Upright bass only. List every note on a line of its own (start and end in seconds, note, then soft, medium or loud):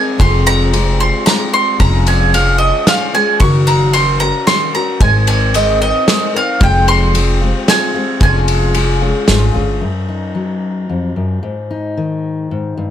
0.20 1.09 F1 loud
1.80 2.70 F1 loud
3.40 4.30 F#1 medium
5.01 5.90 G#1 loud
6.61 7.50 F1 loud
8.21 9.10 F1 loud
9.29 9.53 G#1 medium
9.56 9.80 G1 medium